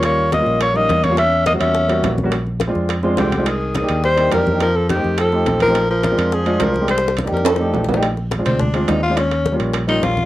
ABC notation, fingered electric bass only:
X:1
M:4/4
L:1/8
Q:1/4=210
K:Bbmix
V:1 name="Fingered electric bass" clef=bass
E,,3 B,,,3 =E,,2- | =E,,3 E,,3 B,,,2- | B,,,3 F,,3 C,,2- | C,,3 E,,3 F,,2- |
F,,3 F,,3 B,,,2- | B,,,3 F,,3 C,,2- | C,,3 F,,3 B,,,2- | B,,,3 D,,3 E,,2- |
E,,3 B,,,3 B,,,2 |]